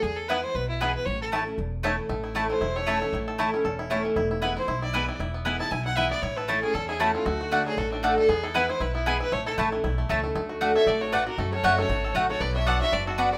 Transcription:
0.02 E2 G#4
0.16 A4
0.28 E3 G#3 B3 E4 B4 G#5
0.43 B3 E4 C5
0.55 B1 B2 B4
0.69 E4
0.81 E3 G#3 B3 E4 G#4 B4 G#5
0.95 B4
1.05 A1 A2 C#5
1.21 A4
1.32 E3 A3 C#4 E4 C#5 A5
1.46 C#4 E4
1.58 E1 E2
1.83 E3 A3 C#4 E4 C#5 A5
2.09 A1 A2 A3
2.24 E4
2.34 E3 A3 C#4 E4 C#5 A5
2.50 E3 C5
2.61 E1 E2 E4
2.76 A3 C#5
2.86 E3 A3 C#4 E4 A4 C#5 A5
3.02 A3 C#4 E4
3.13 A1 A2 E4
3.28 A4
3.38 E3 A3 C#4 E4 C#5 A5
3.54 C#4 E4
3.64 E1 E2 A4
3.79 E4
3.90 E3 A3 C#4 E4 C#5 A5
4.05 E3
4.16 E1 E2 E4
4.31 E4
4.42 E3 G#3 B3 E4 B4 G#5
4.57 E4 C5
4.68 B1 B2 E4
4.82 E4 D5
4.93 E3 G#3 B3 E4 B4 G#5
5.09 E3
5.20 E1 E2 E4
5.34 B3
5.45 E3 G#3 B3 E4 B4 G#5
5.60 E4 A5
5.71 B1 B2 E4 G#5
5.85 E4 F#5
5.96 E3 G#3 B3 E4 B4 E5 G#5
6.10 B3 E4 D5
6.22 A1 A2 E4 C#5
6.37 A4 B4
6.48 E3 A3 C#4 E4 A4 C#5 A5
6.63 C#4 E4 G#4
6.74 E2 A4
6.89 E4 G#4
7.00 E3 A3 C#4 E4 F#4 C#5 A5
7.14 E3 C#4 E4 F4
7.25 D2 D3 A3 F#4
7.41 F#4
7.51 D3 A3 D4 F#4 D5 F#5
7.66 F#3 G#4
7.77 A1 A2 F#4 A4
7.92 A3 D4
8.03 D3 A3 D4 F#4 A4 D5 F#5
8.18 A3 A4
8.28 E2 B3 G#4
8.43 E4 A4
8.54 E3 G#3 B3 E4 B4 G#5
8.69 B3 E4 C5
8.80 B1 B2 E4 B4
8.95 B3 E4
9.06 E3 G#3 B3 E4 G#4 B4 G#5
9.20 B3 E4 B4
9.32 A1 A2 A3 C#5
9.46 E4 A4
9.58 A1 E3 A3 C#4 E4 C#5 A5
9.72 E3 C#4 E4
9.84 B1 E2 E4
9.98 A3
10.09 C#2 E3 A3 C#4 E4 A4 C#5 A5
10.23 A3 C#4 E4
10.35 D2 D3 A3
10.49 F#4
10.61 D3 A3 D4 F#4 D5 F#5
10.75 A4 C#5 E5
10.86 A1 A2 A3 A4 D5
11.01 F#4 A4 C#5
11.12 G#2 A3 D4 F#4 B4 D5 F#5
11.27 F#4 A#4
11.38 F#2 A3 F#4 A4
11.52 C#4 A4 C#5
11.63 F#1 F#3 A3 C#4 F#4 C#5 E5 F#5
11.78 A3 C#4 F#4 A4 C#5
11.89 G#1 C#3 F#4
12.04 A4
12.14 A1 F#3 A3 C#4 F#4 C#5 F#5
12.29 F#4 A4 C#5
12.40 B1 B2 F#3 B4 D5
12.55 D4 C#5 E5
12.66 F#3 B3 D4 F#4 A4 D5 F#5
12.81 D4 F#4 C#5 E5
12.92 F#1 G#2 D4 B4 D5
13.07 D4 F#4 A4
13.18 F#2 B3 F#4 B4 D5 F#5
13.32 D4 B4 D5

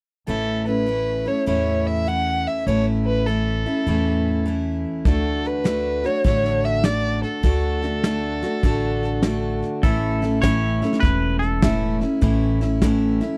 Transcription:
0.27 A1 A2 E3 A3 C#4 E4 A4
0.66 A3 C#4 E4 B4
0.86 E3 A3 C#4 E4
1.26 A3 C#4 E4 C#5
1.46 E2 A2 E3 A3 C#4 E4 C#5
1.87 E5
2.07 E3 A3 C#4 E4 F#5
2.47 E5
2.67 A1 A2 E3 A3 C#4 E4 C#5
3.06 B4
3.26 E3 A3 C#4 E4 A4
3.66 A3 C#4 E4
3.87 E2 A2 E3 A3 C#4 E4
4.46 E3 A3 C#4 E4
5.05 D2 D3 A3 D4 F#4 A4, kick, snare
5.45 B4, snare
5.64 D3 A3 D4 F#4, snare, hi-hat pedal
6.04 A3 D4 F#4 C#5, snare
6.24 A1 D3 A3 D4 F#4 C#5, kick, snare
6.45 snare
6.64 E5, snare
6.83 D3 A3 D4 F#4 D5, snare, hi-hat pedal
7.23 A4, snare
7.43 D2 D3 A3 D4 F#4, kick, snare
7.82 A3 D4 F#4, snare
8.04 D3 A3 D4 F#4, snare, hi-hat pedal
8.43 A3 D4 F#4, snare
8.63 A1 D3 A3 D4 F#4, kick, snare
9.03 snare
9.23 D3 A3 D4 F#4, snare, hi-hat pedal
9.62 snare
9.83 A1 A2 E3 A3 C#4 E4 A4, kick, snare
10.22 A3 C#4 E4, snare
10.42 A2 E3 A3 C#4 E4 C#5, kick, snare, hi-hat pedal
10.82 A3 C#4 E4, snare
10.93 snare
11.00 E1 E3 A3 C#4 B4, kick, snare
11.05 E4
11.39 A4, snare
11.62 A2 E3 A3 C#4 E4, kick, snare, hi-hat pedal
12.01 A3 C#4 E4, snare
12.21 A1 A2 E3 A3 C#4 E4, kick, snare
12.61 A3 C#4 E4, snare
12.82 A2 E3 A3 C#4 E4, kick, snare, hi-hat pedal
13.21 A3 C#4 E4, snare

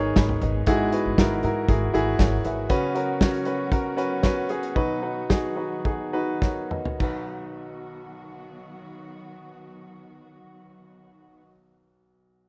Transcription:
Already playing: G#1 G#2 D#3 G#3 B3 D#4 G#4 A#4 B4 C#5
0.16 G#1 G#5 B5, kick, snare, closed hi-hat
0.29 floor tom
0.42 G#1 B4 D#5, closed hi-hat, floor tom
0.66 G#1 G#2 E3 G#3 E4 F#4 G#4, kick, closed hi-hat
0.92 E4 F#4 B4, closed hi-hat
1.06 G#1
1.18 G#1 E4 F#4 A#4, kick, snare, closed hi-hat
1.43 G#2 E4 F#4 A#4, closed hi-hat
1.68 G#1 E4 F#4 G#4, kick, closed hi-hat
1.93 G#1 E4 F#4 G#4 B5, closed hi-hat
2.19 G#1 A#4 C#5 G#5, kick, snare, closed hi-hat
2.44 G#1 G#4 B4 E5, closed hi-hat
2.70 C#3 F#3 B3 C#4 F#4 B4, kick, closed hi-hat
2.94 C#4 F#4 A#4, closed hi-hat
3.20 C#4 F#4 C#5, kick, snare, closed hi-hat
3.33 closed hi-hat
3.45 C#4 F#4 B4, closed hi-hat
3.71 C#4 F#4 A#4, kick, closed hi-hat
3.97 C#4 F#4 B4, closed hi-hat
4.23 C#4 F#4 B4, kick, snare, closed hi-hat
4.49 C#4 F#4 G#4, closed hi-hat
4.63 closed hi-hat
4.75 B2 D#3 F#3 D#4 F#4 B4, kick
5.02 D#4 F#4 B4
5.29 D#4 F#4 G#4, kick, snare
5.56 D#4 F#4 B4
5.85 D#4 F#4 G#4, kick
6.13 D#4 F#4 B4
6.42 A#4 C#5, kick, snare
6.71 B4 D#5, mid tom
6.85 floor tom
6.98 B1 D#3 F#3 B3 D#4 F#4, kick, crash
7.03 B4

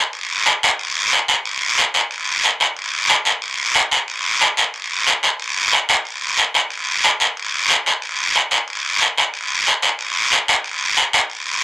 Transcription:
0.13 long guiro
0.46 short guiro
0.63 short guiro
0.79 long guiro
1.12 short guiro
1.28 short guiro
1.46 long guiro
1.78 short guiro
1.94 short guiro
2.11 long guiro
2.44 short guiro
2.60 short guiro
2.76 long guiro
3.09 short guiro
3.25 short guiro
3.42 long guiro
3.75 short guiro
3.91 short guiro
4.08 long guiro
4.41 short guiro
4.57 short guiro
4.74 long guiro
5.07 short guiro
5.23 short guiro
5.40 long guiro
5.73 short guiro
5.89 short guiro
6.05 long guiro
6.38 short guiro
6.54 short guiro
6.70 long guiro
7.04 short guiro
7.20 short guiro
7.37 long guiro
7.70 short guiro
7.86 short guiro
8.02 long guiro
8.35 short guiro
8.51 short guiro
8.68 long guiro
9.01 short guiro
9.18 short guiro
9.34 long guiro
9.67 short guiro
9.82 short guiro
9.99 long guiro
10.32 short guiro
10.48 short guiro
10.64 long guiro
10.97 short guiro
11.13 short guiro
11.30 long guiro

